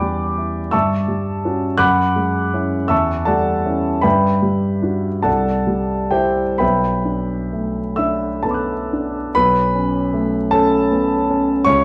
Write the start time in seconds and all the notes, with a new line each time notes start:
Already playing: E2 D5 G5 B5 D6
0.01 G3
0.38 E4
0.71 G2 E5 A5 C#6 E6
1.08 G3
1.45 C#4 F#4
1.78 F#2 F#5 B5 D6 F#6
2.16 G#3
2.54 C#4 E4
2.88 E2 E5 A5 C#6 E6
3.25 G3 A4 D5 F#5 A5
3.66 C#4 E4
4.01 G2 B4 E5 G5 B5
4.42 G3
4.82 D4 F#4
5.23 C2 A4 D5 F#5 A5
5.67 G3
6.11 E4 G4 C5 E5 G5
6.58 B1 B4 E5 G5 B5
7.05 D4
7.53 A3
7.96 D4 E5 E6
8.43 B3 A4 A5
8.48 B5 D6
8.54 F#6
8.93 D4
9.35 B1 B4 B5
9.75 C#4
10.14 A3
10.51 C#4 A4 A5
10.91 B3
11.30 C#4
11.65 C#2 C#5 C#6